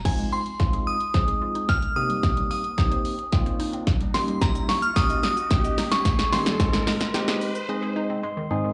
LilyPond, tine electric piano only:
\new Staff \with { instrumentName = "Tine electric piano" } { \time 4/4 \key f \minor \tempo 4 = 110 << { r1 | r1 | r1 | r2 r8 ees''8 c'''4 | } \\ { <aes c' ees' f'>8 r8 <aes c' ees' f'>8 r8 <aes c' ees' aes'>4 r8 <bes c' ees' g'>8~ | <bes c' ees' g'>8 r8 <bes c' ees' g'>8 r8 <bes c' ees' f'>4 r8 <bes des' ees' g'>8~ | <bes des' ees' g'>8 r8 <bes des' ees' g'>8 r8 <bes des' ees' g'>4 r8 <bes des' ees' g'>8 | <aes c' ees' aes'>8 r8 <aes c' ees' g'>8 r8 <aes c' ees' aes'>4 r8 <aes c' ees' aes'>8 | } >> }